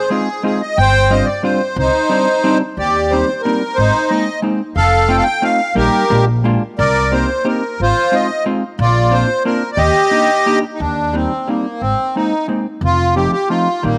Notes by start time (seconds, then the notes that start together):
0.07 G#3 C4 D#4 F4 G#4
0.43 G#3 C4 D#4 F4 G#4
0.61 D#5
0.78 G1 C5 G5
1.10 G3 C4 D4 F4 D#5
1.25 D5
1.43 G3 C4 D4 F4 C5
1.76 C2 D#4 C5
2.09 G3 C4 D4 D#4
2.44 G3 C4 D4 D#4
2.77 D#2 G4 D5
3.10 G3 A#3 C4 D#4 C5
3.41 G3 A#3 A#4
3.46 C4 D#4
3.75 G#1 D#4 C5
4.08 G#3 A#3 C4 D#4 D#5
4.42 G#3 A#3 C4 D#4
4.76 F1 A4 F5
5.08 A3 C4 D#4 F4 G5
5.18 F5
5.23 G5
5.42 A3 C4 D#4 F4 F5
5.75 A#1 G3 A#3 D#4 G4 A#4
6.10 A#1 G#3 A#3 D4 F4
6.44 G#3 A#3 D4 F4
6.78 C2 A#4 D5
7.12 A#3 C4 D#4 G4 C5
7.44 A#3 C4 D#4 G4 A#4
7.80 G#1 F4 C5
8.12 G#3 C4 D#4 F4 D#5
8.46 G#3 C4 D#4 F4
8.79 A#1 F4 D5
9.11 A#3 C4 D4 F4 C5
9.45 A#3 C4 D4 F4 A#4
9.72 D5
9.77 D#2 G4 D#5
10.11 A#3 D4 D#4 G4
10.46 A#3 D4 D#4 G4
10.74 D#4
10.80 D#2 D4
11.13 G3 A#3 C4 D#4
11.46 G3 A#3 C4 D#4
11.80 G#1 C4
12.16 G#3 A#3 C4 D#4
12.48 G#3 A#3 C4 D#4
12.81 F1 F4
13.16 F3 A3 C4 D#4 G4
13.33 G4
13.48 F3 A3 C4 D#4 F4
13.83 A#1 D#3 G3 A#3 D#4